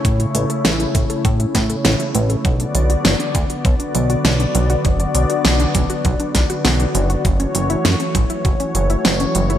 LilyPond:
<<
  \new Staff \with { instrumentName = "Analog synth pad" } { \time 4/4 \key b \dorian \tempo 4 = 100 << { <cis a cis''>1 | <d b d''>1~ | <d b d''>1 | <e a cis''>1 | } \\ { e'1 | fis'1~ | fis'1~ | fis'1 | } >> }
  \new Staff \with { instrumentName = "Synth arpeggio sound" } { \time 4/4 \key b \dorian a16 e'16 a16 a'16 a16 e'16 a16 a'16 a16 e'16 a16 a'16 a16 e'16 a16 a'16 | fis16 d'16 fis16 fis'16 fis16 d'16 fis16 fis'16 fis16 d'16 fis16 fis'16 fis16 d'16 fis16 fis'16 | fis16 d'16 fis16 fis'16 fis16 d'16 fis16 fis'16 fis16 d'16 fis16 fis'16 fis16 d'16 fis16 fis'16 | fis16 cis'16 fis16 e'16 fis16 cis'16 fis16 e'16 fis16 cis'16 fis16 e'16 fis16 cis'16 fis16 e'16 | }
  \new Staff \with { instrumentName = "Analog synth bass" } { \clef bass \time 4/4 \key b \dorian a,8 a,,8 a,,8 a,,8 a,8 a,8 a,,8 a,,8 | b,,8 b,,8 fis,,8 d,8 b,,8 b,,8 b,,8 b,,8 | fis,,8 b,,8 b,,8 b,,8 b,,8 b,,8 b,,8 fis,,8 | fis,,8 fis,,8 fis,8 a,,8 fis,,8 fis,,8 fis,,8 fis,,8 | }
  \new DrumStaff \with { instrumentName = "Drums" } \drummode { \time 4/4 <hh bd>16 hh16 hh16 hh16 <hh sn>16 hh16 <hh bd>16 hh16 <hh bd>16 hh16 <hh bd sn>16 hh16 <hh sn>16 hh16 hh16 hh16 | <hh bd>16 hh16 hh16 hh16 <hh sn>16 hh16 <hh bd>16 hh16 <hh bd>16 hh16 hh16 hh16 <hh sn>16 hh16 hh16 hh16 | <hh bd>16 hh16 hh16 hh16 <hh sn>16 hh16 <hh bd>16 hh16 <hh bd>16 hh16 <hh bd sn>16 hh16 <hh sn>16 hh16 hh16 hh16 | <hh bd>16 hh16 hh16 hh16 <hh sn>16 hh16 <hh bd>16 hh16 <hh bd>16 hh16 hh16 hh16 <hh sn>16 hh16 hh16 hh16 | }
>>